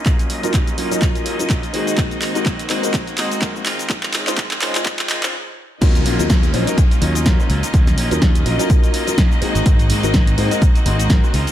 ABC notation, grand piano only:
X:1
M:4/4
L:1/16
Q:"Swing 16ths" 1/4=125
K:Ebdor
V:1 name="Grand piano"
z3 [G,DEFB] z2 [G,DEFB] [G,DEFB]4 [G,DEFB] z2 [A,CEGA]2- | [A,CEGA]3 [A,CEGB] z2 [A,CEGc] [A,CEGB] z2 [A,CEGe]2 [A,CEGB] [A,CEGc] z2 | z3 [A,DEFc] z2 [A,DEFc] [A,EFc]4 [A,DEFc] z4 | [G,DEFB]3 [G,DEFB] z2 [G,DEFc] [G,DEFB] z2 [G,DEFd]2 [G,DEFB] [G,DEFc] z2 |
z3 [G,DEFB] z2 [G,DEFB] [G,DEFB]4 [G,DEFB] z2 [A,CEGA]2- | [A,CEGA]3 [A,CEGB] z2 [A,CEGc] [A,CEGB] z2 [A,CEGe]2 [A,CEGB] [A,CEGc] z2 |]